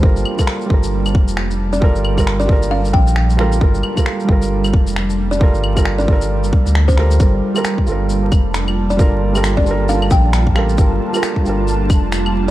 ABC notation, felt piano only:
X:1
M:4/4
L:1/16
Q:"Swing 16ths" 1/4=134
K:Cdor
V:1 name="Felt piano"
[G,FAB]3 [G,FAB]3 [G,FAB]8- [G,FAB]2 | [G,FAB]3 [G,FAB]3 [G,FAB]8 [G,FAB]2 | [G,FAB]3 [G,FAB]3 [G,FAB]8- [G,FAB]2 | [G,FAB]3 [G,FAB]3 [G,FAB]8 [G,FAB]2 |
[G,FAB]3 [G,FAB]3 [G,FAB]8- [G,FAB]2 | [G,FAB]3 [G,FAB]3 [G,FAB]8 [G,FAB]2 | [G,FAB]3 [G,FAB]3 [G,FAB]8- [G,FAB]2 |]